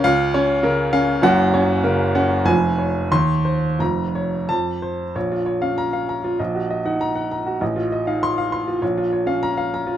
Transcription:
<<
  \new Staff \with { instrumentName = "Grand piano" } { \time 2/4 \key bes \minor \tempo 4 = 98 << { f''4 r4 | ges''4 r4 | aes''4 c'''4 | bes''4 a''4 |
r4 bes''8 r8 | r4 bes''8 r8 | r4 c'''8 r8 | r4 bes''8 r8 | } \\ { r8 des''8 bes'8 f''8 | r8 des''8 bes'8 ges''8 | r8 des''8 r8 c''8 | r8 des''8 r8 c''8 |
des''16 f'16 des''16 f''8 f''16 bes''16 f'16 | ees''16 ges'16 ees''16 ges''8 ges''16 bes''16 ges'16 | ees''16 f'16 ees''16 f''8 f''16 c'''16 f'16 | des''16 f'16 des''16 f''8 f''16 bes''16 f'16 | } >> }
  \new Staff \with { instrumentName = "Grand piano" } { \clef bass \time 2/4 \key bes \minor des,8 des'8 des8 des'8 | <ges,, ges,>8 des'8 des8 des'8 | <f,, f,>4 ees,4 | <f,, f,>4 f,4 |
bes,,8. des'8 r8. | bes,,8. ees'8 r8. | a,,8. ees'8 r8. | bes,,8. des'8 r8. | }
>>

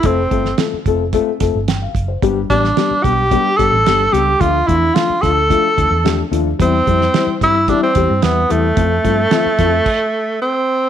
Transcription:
<<
  \new Staff \with { instrumentName = "Tenor saxophone" } { \time 4/4 \key f \lydian \tempo 4 = 110 c'4 r2. | r8 d'4 g'4 a'4 g'8 | f'8 e'8 f'8 a'2 r8 | c'4. e'8 d'16 c'8. b8 a8~ |
a2. c'4 | }
  \new Staff \with { instrumentName = "Upright piano" } { \time 4/4 \key f \lydian << { r2. g''16 f''8 c''16~ | c''16 r2. r8. | r1 | r1 |
r1 | } \\ { <a c' f' a'>8 <a c' f' a'>8 <a c' f' a'>8 <a c' f' a'>8 <a c' f' a'>8 <a c' f' a'>8 r4 | <g b d' g'>8 <g b d' g'>8 <g b d' g'>8 <g b d' g'>8 <g b d' g'>8 <g b d' g'>8 <g b d' g'>8 <g b d' g'>8 | <f a d' f'>8 <f a d' f'>8 <f a d' f'>8 <f a d' f'>8 <f a d' f'>8 <f a d' f'>8 <f a d' g'>8 <f a d' f'>8 | <e g c' e'>8 <e g c' e'>8 <e g c' e'>8 <e g c' e'>8 <e g c' e'>8 <e g c' g'>8 <e g c' e'>8 <e g c' e'>8 |
<f a c' f'>8 <f a c' f'>8 <f a c' f'>8 <f a c' f'>8 r2 | } >> }
  \new Staff \with { instrumentName = "Fingered electric bass" } { \clef bass \time 4/4 \key f \lydian f,,8 g,,8 r8 f,,8. r16 f,,16 g,,8. fis,,8 | g,,8 a,,8 r8 b,,8. r16 g,,16 a,,16 g,,8 cis,8 | d,8 e,8 r8 d,8. r16 d,16 e,8. ees,8 | e,8 f,8 r8 g,8. r16 e,16 g,16 e,8 e,8 |
f,8 g,8 r8 f,8 r2 | }
  \new DrumStaff \with { instrumentName = "Drums" } \drummode { \time 4/4 <hh bd>8 <hh bd>16 sn16 <hh sn>8 <hh bd>8 <hh bd>8 <hh bd sn>8 <hh sn>8 <hh bd>8 | <hh bd>8 <hh bd>16 sn16 <hh sn>8 <hh bd>8 <hh bd>8 <hh bd>8 <hh sn>8 hh8 | <hh bd>8 <hh bd>8 <hh sn>8 <hh bd sn>8 <hh bd>8 <hh bd>8 <hh sn>8 hh8 | <hh bd>8 <hh bd>16 sn16 <hh sn>8 <hh bd sn>8 <hh bd>8 <hh bd>8 <hh sn>8 hh8 |
<hh bd>8 <hh bd>8 <hh sn>8 <hh bd sn>8 <cymc bd>4 r4 | }
>>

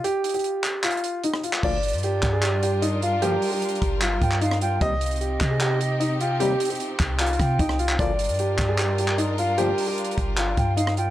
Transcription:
<<
  \new Staff \with { instrumentName = "Flute" } { \time 4/4 \key g \minor \tempo 4 = 151 r1 | r8 d''2. f''8 | r2 r8 g''8 f''8 g''8 | r8 ees''2. g''8 |
r2 r8 g''4. | r8 d''2. f''8 | r2 r8 g''8 f''8 g''8 | }
  \new Staff \with { instrumentName = "Grand piano" } { \time 4/4 \key g \minor g'8. g'4~ g'16 f'4 ees'8 f'8 | d''4 g'8. aes'16 g'8 g'8 ees'8 f'8 | g'8. g'4~ g'16 f'4 ees'8 f'8 | ees''4 g'8. aes'16 g'8 g'8 ees'8 f'8 |
g'8. g'4~ g'16 f'4 ees'8 f'8 | d''4 g'8. aes'16 g'8 g'8 ees'8 f'8 | g'8. g'4~ g'16 f'4 ees'8 f'8 | }
  \new Staff \with { instrumentName = "String section" } { \time 4/4 \key g \minor r1 | <g d' f' bes'>1~ | <g d' f' bes'>1 | <c c' ees' g'>1~ |
<c c' ees' g'>1 | <g d' f' bes'>1~ | <g d' f' bes'>1 | }
  \new Staff \with { instrumentName = "Brass ensemble" } { \clef bass \time 4/4 \key g \minor r1 | <d, bes, f>8 r2. r8 | <d, bes, f>8 r2. r8 | <ees, c g>8 r2. r8 |
<ees, c g>8 r2. r8 | <d, bes, f>8 r2. r8 | <d, bes, f>8 r2. r8 | }
  \new Staff \with { instrumentName = "808-style bass" } { \clef bass \time 4/4 \key g \minor r1 | g,,8. g,8. g,2~ g,8~ | g,8 r4 g,,4 g,4. | c,4. c2~ c8~ |
c8 r4 c,4 c8 c,4 | g,,8. g,8. g,2~ g,8~ | g,8 r4 g,,4 g,4. | }
  \new DrumStaff \with { instrumentName = "Drums" } \drummode { \time 4/4 hh8 hh32 hh32 hh32 hh32 hh8 <hc hh>8 \tuplet 3/2 { <hc hh>16 hh16 hh16 hh16 r16 r16 } hh16 ss16 hh16 hc16 | <cymc bd>8 hh32 hh32 hh32 hh32 hh8 <hc hh bd>8 <hc hh>8 hh8 hh8 hh8 | hh8 hho8 \tuplet 3/2 { hh16 hh16 hh16 <hh bd>16 r16 r16 } <hc hh>8 <hh bd>16 hc16 hh16 ss16 hh8 | <hh bd>8 hh32 hh32 hh32 hh32 hh8 <hc hh bd>8 <hc hh>8 hh8 hh8 hh8 |
hh8 hh32 hh32 hh32 hh32 hh8 <hc hh bd>8 \tuplet 3/2 { <hc hh>16 hh16 hh16 <hh bd ss>16 r16 r16 } <hh bd>16 ss16 hh16 hc16 | <hh bd>8 hh32 hh32 hh32 hh32 hh8 <hc hh bd>8 <hc hh>8 hh16 hc16 hh8 hh8 | hh8 hho8 \tuplet 3/2 { hh16 hh16 hh16 <hh bd>16 r16 r16 } <hc hh>8 <hh bd>8 hh16 ss16 hh8 | }
>>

